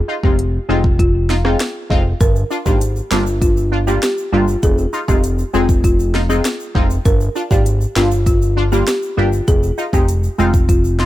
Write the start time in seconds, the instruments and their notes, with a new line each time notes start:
0.08 synth stab D#4 F4
0.23 analog synth bass F1, synth stab G#3 C4 D#4 F4, marimba G4, kick
0.39 closed hi-hat
0.69 analog synth bass F1, synth stab G#3 C4 D#4 F4, marimba F4
0.84 kick
0.99 marimba F4, kick, closed hi-hat
1.29 synth stab D#4 F4, snare
1.44 synth stab G#3 C4 D#4 F4, marimba G#4, cross-stick
1.60 cross-stick, snare, closed hi-hat
1.90 analog synth bass F1, synth stab G#3 C4 D#4 F4, kick
2.21 analog synth bass G1, marimba A#4, kick, closed hi-hat, shaker
2.36 shaker
2.50 synth stab D4 F4, shaker
2.66 analog synth bass G#1, synth stab G3 A#3 D4 F4, marimba G4, kick, shaker
2.81 closed hi-hat, shaker
2.96 shaker
3.11 analog synth bass G1, synth stab G3 A#3 D4 F4, marimba F4, cross-stick, snare, shaker
3.27 shaker
3.42 marimba F4, kick, closed hi-hat, shaker
3.57 shaker
3.72 synth stab D4 F4
3.87 synth stab G3 A#3 D4 F4, marimba G4, shaker
4.02 marimba G4, cross-stick, snare, closed hi-hat, shaker
4.18 shaker
4.32 analog synth bass G1, synth stab G3 A#3 D4 F4, marimba F4
4.48 shaker
4.63 analog synth bass F1, marimba G#4, kick, closed hi-hat, shaker
4.78 shaker
4.93 synth stab D#4 F4, shaker
5.08 analog synth bass F1, synth stab G#3 C4 D#4 F4, marimba G4, kick, shaker
5.24 closed hi-hat, shaker
5.39 shaker
5.53 analog synth bass F1, synth stab G#3 C4 D#4 G#4, marimba F4, shaker
5.69 kick, shaker
5.84 marimba F4, kick, closed hi-hat, shaker
6.00 shaker
6.14 synth stab D#4 F4, snare
6.29 synth stab G#3 C4 D#4 F4, marimba G#4, shaker
6.45 cross-stick, snare, closed hi-hat, shaker
6.60 shaker
6.75 analog synth bass F1, synth stab G#3 C4 D#4 F4, kick
6.90 shaker
7.05 analog synth bass G1, marimba A#4, kick, closed hi-hat, shaker
7.21 shaker
7.35 synth stab D4 F4, shaker
7.51 analog synth bass G#1, synth stab G3 A#3 D4 F4, marimba G4, kick, shaker
7.66 closed hi-hat, shaker
7.81 shaker
7.96 analog synth bass G1, synth stab G3 A#3 D4 F4, marimba F4, cross-stick, snare, shaker
8.11 shaker
8.26 marimba F4, kick, closed hi-hat, shaker
8.42 shaker
8.57 synth stab D4 F4
8.72 synth stab G3 A#3 D4 F4, marimba G4, shaker
8.87 marimba G4, cross-stick, snare, closed hi-hat, shaker
9.03 shaker
9.17 analog synth bass G1, synth stab G3 A#3 D4 G4, marimba F4
9.33 shaker
9.48 analog synth bass F1, marimba G#4, kick, closed hi-hat, shaker
9.63 shaker
9.78 synth stab D#4 F4, shaker
9.93 analog synth bass F1, synth stab G#3 C4 D#4 G4, marimba G4, kick, shaker
10.08 closed hi-hat, shaker
10.24 shaker
10.38 analog synth bass F1, synth stab G#3 C4 D#4 F4, marimba F4, shaker
10.54 kick, shaker
10.69 marimba F4, kick, closed hi-hat, shaker
10.84 shaker
10.99 synth stab D#4 F4, snare